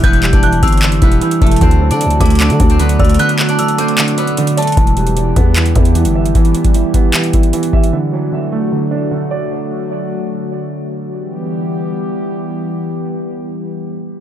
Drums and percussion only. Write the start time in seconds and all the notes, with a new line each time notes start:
0.04 kick, closed hi-hat
0.13 closed hi-hat
0.23 clap
0.33 kick, closed hi-hat
0.43 closed hi-hat
0.53 closed hi-hat
0.63 kick, closed hi-hat
0.68 closed hi-hat
0.72 closed hi-hat
0.77 closed hi-hat
0.82 clap, closed hi-hat
0.92 closed hi-hat
1.02 kick, closed hi-hat
1.12 closed hi-hat
1.21 closed hi-hat
1.31 closed hi-hat
1.42 kick, closed hi-hat
1.47 closed hi-hat
1.51 closed hi-hat
1.56 closed hi-hat
1.61 kick, closed hi-hat
1.71 closed hi-hat
1.91 closed hi-hat
2.01 closed hi-hat
2.10 closed hi-hat
2.21 kick, closed hi-hat
2.26 closed hi-hat
2.30 closed hi-hat
2.35 closed hi-hat
2.40 clap, closed hi-hat
2.50 closed hi-hat
2.60 kick, closed hi-hat
2.70 closed hi-hat
2.79 closed hi-hat
2.89 closed hi-hat
3.00 kick, closed hi-hat
3.05 closed hi-hat
3.09 closed hi-hat
3.14 closed hi-hat
3.19 closed hi-hat
3.29 closed hi-hat
3.39 clap
3.49 closed hi-hat
3.59 closed hi-hat
3.68 closed hi-hat
3.78 closed hi-hat, open hi-hat
3.88 closed hi-hat
3.98 clap, closed hi-hat
4.08 closed hi-hat
4.18 closed hi-hat
4.27 closed hi-hat
4.37 closed hi-hat
4.47 closed hi-hat
4.58 closed hi-hat
4.62 closed hi-hat
4.67 closed hi-hat
4.72 closed hi-hat
4.77 kick, closed hi-hat
4.87 closed hi-hat
4.97 closed hi-hat
5.07 closed hi-hat
5.17 closed hi-hat
5.36 kick, closed hi-hat
5.56 clap, closed hi-hat
5.66 closed hi-hat
5.75 kick, closed hi-hat
5.85 closed hi-hat
5.95 closed hi-hat
6.05 closed hi-hat
6.26 closed hi-hat
6.35 kick, closed hi-hat
6.45 closed hi-hat
6.55 closed hi-hat
6.65 kick, closed hi-hat
6.74 closed hi-hat
6.94 kick, closed hi-hat
7.14 clap, closed hi-hat
7.24 closed hi-hat
7.33 kick, closed hi-hat
7.43 closed hi-hat
7.53 closed hi-hat
7.63 closed hi-hat
7.73 kick
7.84 closed hi-hat